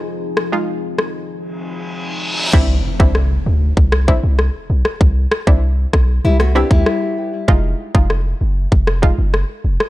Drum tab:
CC |----------------|x---------------|----------------|----------------|
SD |--r---r---------|----r----r--r--r|--r---r--r--r---|----r----r--r--r|
BD |----------------|o--o----o-o-----|o--o--o----o----|o--o----o-o-----|